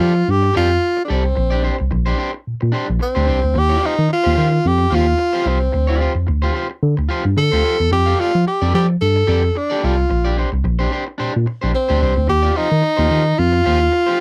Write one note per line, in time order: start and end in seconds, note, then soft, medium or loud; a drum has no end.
0.00 0.22 F3 medium
0.00 0.32 F4 loud
0.00 0.12 G4 medium
0.00 0.12 A4 medium
0.00 0.13 D5 medium
0.15 muted clean electric guitar stroke soft
0.28 0.49 G2 loud
0.28 0.56 G4 loud
0.42 muted clean electric guitar stroke medium
0.54 0.77 F2 medium
0.54 1.01 F4 loud
0.54 0.69 G4 loud
0.54 0.69 A4 medium
0.54 0.68 D5 loud
0.69 muted clean electric guitar stroke soft
0.97 muted clean electric guitar stroke soft
1.05 1.13 D4 medium
1.05 1.24 G4 medium
1.09 1.31 C2 medium
1.09 1.92 C4 loud
1.09 1.24 A4 medium
1.09 1.23 D5 loud
1.24 muted clean electric guitar stroke medium
1.35 1.70 A#1 medium
1.35 muted clean electric guitar stroke soft
1.50 1.61 D4 medium
1.50 1.62 G4 medium
1.50 1.63 D5 medium
1.63 1.75 D4 medium
1.63 1.75 G4 medium
1.63 1.76 C5 medium
1.78 1.89 C2 medium
1.78 muted clean electric guitar stroke soft
1.91 2.13 A#1 loud
1.91 muted clean electric guitar stroke soft
2.06 2.16 D4 medium
2.06 2.18 G4 medium
2.06 2.18 C5 medium
2.18 2.30 D4 medium
2.18 2.30 G4 medium
2.18 2.31 C5 medium
2.47 2.53 A#2 medium
2.61 2.71 A#2 medium
2.61 muted clean electric guitar stroke medium
2.72 2.87 D4 medium
2.72 2.88 G4 medium
2.72 2.87 C5 loud
2.88 2.98 A#1 loud
2.88 muted clean electric guitar stroke soft
2.99 3.60 C4 loud
2.99 muted clean electric guitar stroke soft
3.15 3.26 D2 loud
3.15 3.25 D4 medium
3.15 3.26 G4 medium
3.15 3.27 C5 medium
3.26 3.40 C2 medium
3.26 3.38 D4 medium
3.26 3.39 G4 medium
3.26 3.39 C5 medium
3.42 3.53 D2 medium
3.42 muted clean electric guitar stroke soft
3.54 3.76 D#2 loud
3.54 muted clean electric guitar stroke medium
3.58 3.87 G4 loud
3.69 3.80 F4 medium
3.69 3.81 G4 medium
3.69 3.83 D5 loud
3.81 3.93 F4 medium
3.81 3.94 G4 medium
3.81 3.94 C5 medium
3.86 4.11 D#4 loud
3.97 4.07 D#3 medium
3.97 muted clean electric guitar stroke soft
4.09 4.69 F4 loud
4.09 muted clean electric guitar stroke soft
4.24 4.35 D#2 loud
4.24 4.34 F4 medium
4.24 4.35 G4 medium
4.24 4.36 C5 medium
4.35 4.58 D#3 medium
4.35 4.47 F4 medium
4.35 4.48 G4 medium
4.35 4.48 C5 medium
4.51 muted clean electric guitar stroke medium
4.65 4.86 F2 loud
4.65 4.96 G4 loud
4.78 muted clean electric guitar stroke medium
4.90 5.13 D#2 loud
4.90 5.05 F4 loud
4.90 5.06 G4 loud
4.90 5.05 C5 loud
4.94 5.49 F4 loud
5.07 muted clean electric guitar stroke soft
5.18 muted clean electric guitar stroke soft
5.33 5.44 F4 medium
5.33 5.45 G4 medium
5.33 5.45 C5 loud
5.45 5.67 C2 medium
5.45 6.28 C4 medium
5.45 5.57 F4 medium
5.45 5.58 G4 medium
5.45 5.58 C5 medium
5.72 6.06 D2 medium
5.72 muted clean electric guitar stroke soft
5.87 5.98 F4 medium
5.87 5.99 G4 medium
5.87 6.01 D5 medium
5.99 6.11 F4 medium
5.99 6.12 G4 medium
5.99 6.12 C5 medium
6.15 6.25 F2 medium
6.15 muted clean electric guitar stroke soft
6.27 6.49 D2 medium
6.27 muted clean electric guitar stroke soft
6.42 6.52 F4 medium
6.42 6.54 G4 medium
6.42 6.54 C5 medium
6.54 6.66 F4 medium
6.54 6.66 G4 medium
6.54 6.67 C5 medium
6.70 muted clean electric guitar stroke medium
6.83 6.94 D3 loud
6.97 7.07 D2 medium
6.97 muted clean electric guitar stroke soft
7.09 7.24 F4 medium
7.09 7.24 G4 medium
7.09 7.23 C5 loud
7.25 7.34 G2 loud
7.25 muted clean electric guitar stroke soft
7.37 7.49 D3 loud
7.37 7.88 A4 loud
7.37 muted clean electric guitar stroke soft
7.52 7.62 D2 loud
7.52 7.63 F4 medium
7.52 7.64 G4 medium
7.52 7.63 C5 medium
7.64 7.76 F4 medium
7.64 7.76 G4 medium
7.64 7.76 C5 medium
7.80 7.89 E2 medium
7.91 8.13 F2 loud
7.91 8.21 G4 loud
7.91 muted clean electric guitar stroke medium
8.06 8.18 G4 medium
8.06 8.18 A4 medium
8.06 8.18 F5 medium
8.19 8.47 F4 loud
8.19 8.30 G4 medium
8.19 8.31 A4 medium
8.19 8.31 D5 medium
8.35 8.44 F3 medium
8.47 8.72 G4 loud
8.47 muted clean electric guitar stroke soft
8.62 8.71 F2 loud
8.62 8.72 G4 medium
8.62 8.73 A4 medium
8.62 8.73 D5 loud
8.73 8.95 F3 medium
8.73 8.85 G4 medium
8.73 8.87 G4 loud
8.73 8.85 A4 medium
8.73 8.86 D5 medium
8.89 muted clean electric guitar stroke soft
9.01 9.22 G2 medium
9.01 9.59 A4 loud
9.16 muted clean electric guitar stroke soft
9.27 9.50 F2 medium
9.27 9.42 G4 loud
9.27 9.43 A4 loud
9.27 9.41 D5 loud
9.43 muted clean electric guitar stroke soft
9.55 9.86 D4 medium
9.55 muted clean electric guitar stroke soft
9.70 9.81 G4 medium
9.70 9.82 A4 medium
9.70 9.82 D5 medium
9.82 10.04 C2 medium
9.82 10.38 F4 medium
9.82 9.94 G4 medium
9.82 9.94 A4 medium
9.82 9.95 D5 medium
10.09 10.43 A#1 medium
10.09 muted clean electric guitar stroke soft
10.25 10.35 D4 medium
10.25 10.36 G4 medium
10.25 10.36 D5 medium
10.37 10.48 D4 medium
10.37 10.49 G4 medium
10.37 10.49 C5 medium
10.52 10.62 C2 medium
10.52 muted clean electric guitar stroke soft
10.64 10.86 A#1 loud
10.64 muted clean electric guitar stroke soft
10.79 10.90 D4 medium
10.79 10.91 G4 medium
10.79 10.91 C5 medium
10.91 11.03 D4 medium
10.91 11.04 G4 medium
10.91 11.04 C5 medium
11.18 11.26 A#2 medium
11.18 11.33 D4 medium
11.18 11.34 G4 medium
11.18 11.33 C5 loud
11.34 11.45 A#2 medium
11.34 muted clean electric guitar stroke soft
11.46 muted clean electric guitar stroke soft
11.61 11.72 A#1 loud
11.61 11.72 D4 medium
11.61 11.71 G4 medium
11.61 11.71 C5 medium
11.73 12.26 C4 loud
11.73 muted clean electric guitar stroke medium
11.89 11.99 D2 medium
11.89 11.99 D4 medium
11.89 12.00 G4 medium
11.89 12.01 C5 loud
12.01 12.14 C2 medium
12.01 12.13 D4 medium
12.01 12.13 G4 medium
12.01 12.14 C5 medium
12.17 12.26 D2 medium
12.17 muted clean electric guitar stroke soft
12.28 12.50 D#2 medium
12.28 12.58 G4 loud
12.28 muted clean electric guitar stroke soft
12.42 12.53 F4 medium
12.42 12.54 G4 medium
12.42 12.55 D5 medium
12.54 13.40 D#4 loud
12.54 12.67 F4 medium
12.54 12.67 G4 medium
12.54 12.68 C5 medium
12.70 12.81 D#3 loud
12.70 muted clean electric guitar stroke soft
12.82 muted clean electric guitar stroke soft
12.97 13.08 D#2 loud
12.97 13.08 F4 medium
12.97 13.09 G4 medium
12.97 13.09 C5 medium
13.09 13.32 D#3 medium
13.09 13.22 F4 medium
13.09 13.22 G4 medium
13.09 13.22 C5 medium
13.38 13.60 F2 loud
13.38 14.20 F4 loud
13.53 muted clean electric guitar stroke medium
13.64 13.87 D#2 loud
13.64 13.80 F4 medium
13.64 13.80 G4 medium
13.64 13.79 C5 loud
13.80 muted clean electric guitar stroke medium
13.92 muted clean electric guitar stroke soft
14.07 14.18 F4 medium
14.07 14.19 G4 medium
14.07 14.19 C5 medium